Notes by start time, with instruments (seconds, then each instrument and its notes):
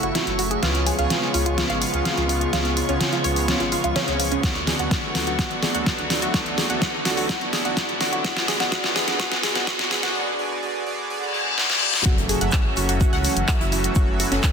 Already playing: supersaw synth C#3 F#3 A3 E4 F#4, analog polysynth A3 E4 F#4 E5, synth texture C#6, riser
0.03 detuned saw bass F#1, synth arpeggio sound F#4, closed hi-hat
0.15 synth arpeggio sound E4, snare, closed hi-hat
0.27 detuned saw bass F#1, closed hi-hat
0.39 synth arpeggio sound F#4, open hi-hat
0.51 synth arpeggio sound G#4, closed hi-hat
0.62 detuned saw bass C#2, analog polysynth C#3 B3 F4 G#4 C#5, supersaw synth C#3 F3 G#3 B3 F4, synth arpeggio sound F4, snare, closed hi-hat
0.75 closed hi-hat
0.86 synth arpeggio sound G#4, open hi-hat
0.98 detuned saw bass C#2, analog polysynth C#3 B3 F4 G#4 C#5, synth arpeggio sound F5, closed hi-hat
1.10 snare, closed hi-hat
1.34 detuned saw bass C#2, synth arpeggio sound F4, open hi-hat
1.46 synth arpeggio sound F4, closed hi-hat
1.58 synth arpeggio sound F4, snare, closed hi-hat
1.70 detuned saw bass G#1, synth arpeggio sound F5, closed hi-hat
1.82 analog polysynth C#3 B3 F4 G#4 F5, open hi-hat
1.94 detuned saw bass C#2, closed hi-hat
2.05 synth arpeggio sound F5, snare, closed hi-hat
2.17 detuned saw bass C#2, synth arpeggio sound F4, closed hi-hat
2.29 synth arpeggio sound F4, open hi-hat
2.41 closed hi-hat
2.53 detuned saw bass C#2, analog polysynth C#3 B3 F4 G#4 C#5, synth arpeggio sound F4, snare, closed hi-hat
2.65 closed hi-hat
2.77 synth arpeggio sound F4, open hi-hat
2.89 detuned saw bass C#2, analog polysynth C#3 B3 F4 G#4 C#5, synth arpeggio sound C#4, closed hi-hat
3.01 snare, closed hi-hat
3.13 synth arpeggio sound F4, closed hi-hat
3.24 detuned saw bass C#2, synth arpeggio sound C#5, open hi-hat
3.36 open hi-hat
3.48 synth arpeggio sound C#4, snare, closed hi-hat
3.60 detuned saw bass G#1, synth arpeggio sound F4, closed hi-hat
3.72 analog polysynth C#3 B3 F4 G#4 F5, synth arpeggio sound F4, open hi-hat
3.84 detuned saw bass C#2, synth arpeggio sound F4, closed hi-hat
3.96 analog polysynth C#3 B3 F4 G#4 C#5, synth arpeggio sound C#4, snare, closed hi-hat
4.08 detuned saw bass C#2, closed hi-hat
4.20 synth arpeggio sound F3, open hi-hat
4.32 synth arpeggio sound C#4, closed hi-hat
4.43 detuned saw bass D2, analog polysynth D3 B3 F#4 A4 D5, supersaw synth D3 F#3 A3 F#4, synth arpeggio sound F#4, kick, snare, closed hi-hat
4.55 closed hi-hat
4.67 synth arpeggio sound G#4, snare, open hi-hat
4.79 detuned saw bass D2, analog polysynth D3 B3 F#4 A4 D5, synth arpeggio sound F#5, closed hi-hat
4.91 kick, snare, closed hi-hat
5.15 detuned saw bass D2, synth arpeggio sound F#4, snare, open hi-hat
5.27 synth arpeggio sound F#4, closed hi-hat
5.39 analog polysynth D3 B3 F#4 A4 D5, synth arpeggio sound F#4, kick, snare, closed hi-hat
5.51 detuned saw bass A1, closed hi-hat
5.62 synth arpeggio sound G#4, snare, open hi-hat
5.75 detuned saw bass D2, analog polysynth D3 B3 F#4 A4 D5, synth arpeggio sound F#5, closed hi-hat
5.86 kick, snare, closed hi-hat
5.98 detuned saw bass D2, closed hi-hat
6.10 synth arpeggio sound F#4, snare, open hi-hat
6.22 synth arpeggio sound F#4, closed hi-hat
6.34 detuned saw bass D2, analog polysynth D3 B3 F#4 A4 D5, synth arpeggio sound F#4, kick, snare, closed hi-hat
6.46 closed hi-hat
6.58 synth arpeggio sound G#4, snare, open hi-hat
6.70 detuned saw bass D2, analog polysynth D3 B3 F#4 A4 D5, synth arpeggio sound F#5, closed hi-hat
6.82 kick, snare, closed hi-hat
7.05 detuned saw bass D2, synth arpeggio sound F#4, snare, open hi-hat
7.17 synth arpeggio sound F#4, open hi-hat
7.29 analog polysynth D3 B3 F#4 A4 D5, synth arpeggio sound F#4, kick, snare, closed hi-hat
7.41 detuned saw bass A1, closed hi-hat
7.53 synth arpeggio sound G#4, snare, open hi-hat
7.65 detuned saw bass D2, analog polysynth D3 B3 F#4 A4 D5, synth arpeggio sound F#5, closed hi-hat
7.77 kick, snare, closed hi-hat
7.89 detuned saw bass D2, closed hi-hat
8.01 synth arpeggio sound F#4, snare, open hi-hat
8.13 synth arpeggio sound F#4, closed hi-hat
8.24 detuned saw bass E1, analog polysynth D3 B3 F#4 G#4 D5, supersaw synth E3 G#3 B3 F#4, synth arpeggio sound F#4, kick, snare, closed hi-hat
8.37 snare, closed hi-hat
8.48 synth arpeggio sound G#4, snare, open hi-hat
8.60 detuned saw bass E1, analog polysynth D3 B3 F#4 G#4 D5, synth arpeggio sound F#5, snare, closed hi-hat
8.72 analog polysynth D3 B3 F#4 G#4 D5, synth arpeggio sound F#4, kick, snare, closed hi-hat
8.84 snare
8.96 detuned saw bass E1, synth arpeggio sound G#4, snare, open hi-hat
9.08 analog polysynth D3 B3 F#4 G#4 D5, synth arpeggio sound F#5, snare, closed hi-hat
9.20 analog polysynth D3 B3 F#4 G#4 D5, synth arpeggio sound F#4, kick, snare, closed hi-hat
9.32 detuned saw bass B1, snare, closed hi-hat
9.43 synth arpeggio sound G#4, snare, open hi-hat
9.55 detuned saw bass E1, analog polysynth D3 B3 F#4 G#4 D5, synth arpeggio sound F#5, snare, closed hi-hat
9.67 analog polysynth D3 B3 F#4 G#4 D5, synth arpeggio sound F#4, kick, snare, closed hi-hat
9.79 detuned saw bass E1, snare, closed hi-hat
9.91 synth arpeggio sound G#4, snare, open hi-hat
10.03 analog polysynth D3 B3 F#4 G#4 D5, synth arpeggio sound F#5, snare, closed hi-hat
10.15 analog polysynth D3 B3 F#4 G#4 D5
10.39 analog polysynth D3 B3 F#4 G#4 D5
10.62 analog polysynth D3 B3 F#4 G#4 D5
10.86 analog polysynth D3 B3 F#4 G#4 D5
11.10 analog polysynth D3 B3 F#4 G#4 D5, reverse cymbal
11.34 analog polysynth D3 B3 F#4 G#4 D5
11.58 analog polysynth D3 B3 F#4 G#4 D5, snare
11.70 snare
11.82 analog polysynth D3 B3 F#4 G#4 D5
11.94 snare
12.04 detuned saw bass F#1, supersaw synth E3 F#3 A3 C#4 F#4, analog polysynth F#3 C#4 F#4 A4 E5, synth arpeggio sound F#4, kick, closed hi-hat, impact, shaker
12.18 closed hi-hat
12.29 synth arpeggio sound G#4, open hi-hat, shaker
12.41 detuned saw bass F#1, analog polysynth F#3 C#4 F#4 A4 E5, synth arpeggio sound F#5, closed hi-hat
12.52 kick, snare, clap, closed hi-hat, shaker
12.77 detuned saw bass F#1, synth arpeggio sound F#4, open hi-hat, shaker
12.89 synth arpeggio sound F#4, closed hi-hat
13.01 synth arpeggio sound F#4, kick, closed hi-hat, shaker
13.13 detuned saw bass C#2, synth arpeggio sound F#5, snare
13.24 analog polysynth F#3 C#4 F#4 A4 F#5, open hi-hat, shaker
13.37 detuned saw bass F#1, closed hi-hat
13.48 analog polysynth F#3 C#4 F#4 A4 E5, synth arpeggio sound F#5, kick, snare, clap, closed hi-hat, shaker
13.60 detuned saw bass F#1, synth arpeggio sound E4, closed hi-hat
13.72 synth arpeggio sound E4, open hi-hat, shaker
13.84 closed hi-hat
13.95 detuned saw bass F#1, analog polysynth F#3 C#4 F#4 A4 E5, supersaw synth B3, synth arpeggio sound F#4, kick, closed hi-hat, shaker
14.20 synth arpeggio sound F#4, open hi-hat, shaker
14.32 detuned saw bass F#1, analog polysynth F#3 C#4 F#4 A4 E5, synth arpeggio sound C#4, snare, closed hi-hat
14.43 kick, snare, clap, closed hi-hat, shaker